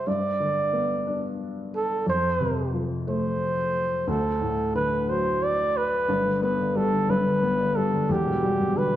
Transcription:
0.07 grand piano G2, flugelhorn D5
0.40 grand piano D3
0.73 grand piano B3
1.07 grand piano D4
1.76 flugelhorn A4
2.06 grand piano F2, flugelhorn C5
2.41 grand piano C3
2.74 grand piano F3
3.07 grand piano A3, flugelhorn C5
4.07 grand piano D2, flugelhorn A4
4.41 grand piano A2
4.75 grand piano D3, flugelhorn B4
5.09 grand piano F#3, flugelhorn C5
5.43 flugelhorn D5
5.77 flugelhorn B4
6.09 grand piano G1 G2
6.25 grand piano D3
6.42 grand piano B3, flugelhorn B4
6.59 grand piano D3
6.76 grand piano G3, flugelhorn A4
6.93 grand piano D3
7.09 grand piano G1 G2, flugelhorn B4
7.26 grand piano D3
7.43 grand piano B3
7.60 grand piano D3
7.76 grand piano G3, flugelhorn A4
7.93 grand piano D3
8.09 grand piano E1 E2, flugelhorn G4
8.26 grand piano B2
8.43 grand piano G3
8.60 grand piano B2
8.76 grand piano D3, flugelhorn B4
8.92 grand piano B2

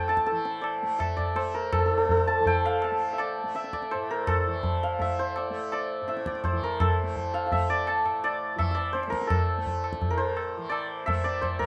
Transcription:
Already playing: tanpura A2 E3 A3, santur A4 C5 D5 E5 G5
0.08 santur A5, tabla na
0.17 tabla ke
0.26 santur A4, tabla te
0.31 tanpura E3
0.45 tabla te
0.61 santur D5, tabla na
0.83 tanpura A3
0.99 santur E5, tabla na, tabla ge
1.17 santur D5, tabla ge
1.35 tanpura A3, santur C5, tabla na
1.54 santur A#4
1.73 santur A4, tabla na, tabla ge
1.79 santur A4
1.86 tanpura A2, santur A4
1.91 santur A4
1.98 santur A4
2.05 santur A4
2.09 santur A4, tabla tin, tabla ge
2.17 santur A4
2.27 santur A5
2.40 tanpura E3
2.45 santur G5, tabla tin, tabla ge
2.66 santur F5
2.82 santur A5, tabla na
2.91 tanpura A3
3.13 santur E5
3.18 santur D5, tabla na
3.44 tanpura A3
3.55 santur E5, tabla te
3.64 tabla te
3.73 santur D5, tabla ke
3.82 tabla te
3.91 tanpura A2, santur C5, tabla na
4.11 santur A#4
4.27 santur A4, tabla na, tabla ge
4.47 tanpura E3
4.63 tabla tin, tabla ge
4.83 santur F5
4.99 tanpura A3, santur E5, tabla tin, tabla ge
5.19 santur C5
5.36 santur D5, tabla na
5.50 tanpura A3
5.72 santur D5, tabla na
6.02 tanpura A2
6.08 santur E5, tabla te
6.17 tabla te
6.26 santur D5, tabla ke
6.35 tabla te
6.44 santur C5, tabla na, tabla ge
6.53 tanpura E3
6.62 santur A#4, tabla ge
6.80 santur A4, tabla na, tabla ge
7.03 tanpura A3
7.16 tabla tin, tabla ge
7.34 santur F5, tabla na
7.46 santur F5
7.52 tanpura A3, santur E5, tabla tin, tabla ge
7.70 santur D5
7.87 santur A5, tabla na
8.05 tanpura A2, tabla na
8.24 santur D5, tabla na
8.56 tanpura E3, santur E5, tabla na, tabla ge
8.71 santur D5 E5
8.77 tabla te
8.93 santur C5, tabla te
9.03 tanpura A3, tabla te
9.10 santur A#4, tabla ke
9.21 tabla te
9.27 santur A4, tabla na, tabla ge
9.58 tanpura A3
9.66 tabla tin, tabla ge
9.84 tabla na
9.93 tabla ke
10.02 tabla tin, tabla ge
10.07 tanpura A2, santur A#4
10.18 santur C5
10.37 tabla na
10.57 tanpura E3
10.69 santur D5, tabla na
11.06 tanpura A3, santur E5, tabla na, tabla ge
11.24 santur D5, tabla te
11.41 santur C5, tabla na, tabla ge
11.59 tanpura A3, santur A#4, tabla ge

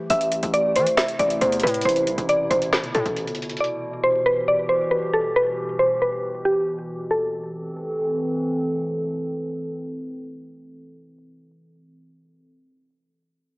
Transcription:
0.10 808-style bass A1, ambient pad C3 A3 E4, synth pluck E5, closed hi-hat
0.21 closed hi-hat
0.32 closed hi-hat
0.43 808-style bass A1, closed hi-hat
0.54 synth pluck D5, closed hi-hat
0.76 808-style bass E3, synth pluck C5, closed hi-hat
0.87 closed hi-hat
0.97 synth pluck E5, finger snap, snare, closed hi-hat
1.08 closed hi-hat
1.19 808-style bass A1, synth pluck D5, closed hi-hat
1.30 closed hi-hat
1.41 808-style bass E2, synth pluck C5, closed hi-hat
1.52 closed hi-hat
1.60 808-style bass A2, synth pluck B4, closed hi-hat
1.67 closed hi-hat
1.74 closed hi-hat
1.81 808-style bass A1, closed hi-hat
1.85 ambient pad B2, synth pluck C5, closed hi-hat
1.96 closed hi-hat
2.07 808-style bass C2, closed hi-hat
2.18 808-style bass A1, closed hi-hat
2.29 synth pluck D5, closed hi-hat
2.50 808-style bass A1, synth pluck C5, closed hi-hat
2.62 closed hi-hat
2.73 finger snap, snare, closed hi-hat
2.84 808-style bass G1, closed hi-hat
2.95 808-style bass A2, synth pluck A4, closed hi-hat
3.06 808-style bass A1, closed hi-hat
3.16 closed hi-hat
3.27 808-style bass G1, closed hi-hat
3.35 closed hi-hat
3.42 closed hi-hat
3.49 closed hi-hat
3.57 ambient pad E3 G4, synth pluck D5, closed hi-hat
3.64 closed hi-hat
4.04 synth pluck C5
4.26 synth pluck B4
4.48 synth pluck D5
4.69 synth pluck C5
4.91 synth pluck B4
5.13 synth pluck A4
5.36 synth pluck B4
5.79 synth pluck C5
6.02 synth pluck B4
6.45 synth pluck G4
7.11 ambient pad E3 C4 A4, synth pluck A4

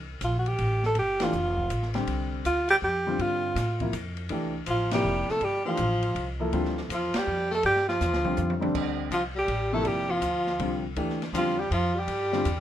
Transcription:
Already playing: upright bass C2
0.21 upright bass A#1, alto saxophone F4, hi-hat pedal, ride
0.39 alto saxophone F#4
0.46 alto saxophone G4, ride
0.58 upright bass A1, ride
0.83 alto saxophone A4, snare
0.95 upright bass G1, alto saxophone G4, ride
1.20 grand piano E3 A3 D4 G4, alto saxophone F4, snare, ride
1.33 upright bass F1, hi-hat pedal
1.58 kick
1.70 upright bass A1, hi-hat pedal, ride
1.83 snare
1.94 grand piano D3 G3 C4 G4, snare, ride
2.07 upright bass C2, ride
2.45 upright bass D2, alto saxophone F4, hi-hat pedal, ride
2.69 alto saxophone G4, ride
2.82 upright bass F2, alto saxophone G4
3.07 grand piano D3 G3 C4 F4
3.19 upright bass G2, alto saxophone F4, ride
3.55 upright bass A2, snare, hi-hat pedal, ride
3.80 grand piano C3 F3 A#3 E4, kick, ride
3.93 upright bass F2, hi-hat pedal, ride
4.17 ride
4.29 upright bass C2, grand piano E3 A3 D4 G4, ride
4.66 upright bass A1, tenor saxophone F3, alto saxophone F4, hi-hat pedal, ride
4.91 grand piano C3 F3 A#3 E4, tenor saxophone G3, alto saxophone G4, snare, ride
5.05 upright bass F1
5.29 tenor saxophone A3, alto saxophone A4, muted upright bass stroke, snare
5.41 upright bass G1, tenor saxophone G3, alto saxophone G4, ride
5.65 grand piano E3 A3 D4 G4, tenor saxophone F3, alto saxophone F4
5.77 upright bass A1, hi-hat pedal, ride
6.03 ride
6.15 upright bass C2, ride
6.39 grand piano F3 A#3 E4 A4
6.52 upright bass D2, grand piano D3 G3 C4 F4, ride
6.65 snare
6.78 snare
6.89 upright bass E2, tenor saxophone F3, hi-hat pedal, ride
6.94 alto saxophone F4
7.14 tenor saxophone G3, muted upright bass stroke, snare, ride
7.18 alto saxophone G4
7.27 upright bass F2
7.51 tenor saxophone A3, alto saxophone A4, snare
7.63 upright bass G2, tenor saxophone G3, alto saxophone G4, ride
7.76 snare
7.88 tenor saxophone F3, alto saxophone F4, snare
8.01 upright bass E2, snare, hi-hat pedal
8.13 upright bass D2, snare
8.24 upright bass C2, grand piano D3 G3 C4 F4, high tom
8.37 upright bass F2, hi-hat pedal, high tom
8.50 high tom
8.60 grand piano D3 G3 C4 D4, high tom
8.75 upright bass D2, kick, crash
9.11 upright bass C2, tenor saxophone F3, alto saxophone F4, hi-hat pedal, ride
9.35 tenor saxophone G3, alto saxophone G4
9.48 upright bass A1, ride
9.73 grand piano C3 F3 A#3 E4, tenor saxophone A3, alto saxophone A4
9.85 upright bass G1, tenor saxophone G3, alto saxophone G4, ride
10.09 tenor saxophone F3, alto saxophone F4
10.21 upright bass D2, hi-hat pedal, ride
10.47 snare
10.59 upright bass C2, grand piano D3 G3 C4 F4, ride
10.96 upright bass D2, grand piano E3 A3 D4 G4, ride
11.10 snare
11.22 snare, ride
11.33 upright bass E2, grand piano D3 G3 C4 F4, tenor saxophone F3, hi-hat pedal, ride
11.38 alto saxophone F4
11.58 tenor saxophone G3, alto saxophone G4
11.71 upright bass F2, tenor saxophone F3, alto saxophone F4, ride
11.94 tenor saxophone G3
11.99 alto saxophone G4
12.08 upright bass G2, ride
12.32 grand piano D3 G3 C4 F4, snare
12.45 upright bass E2, hi-hat pedal, ride

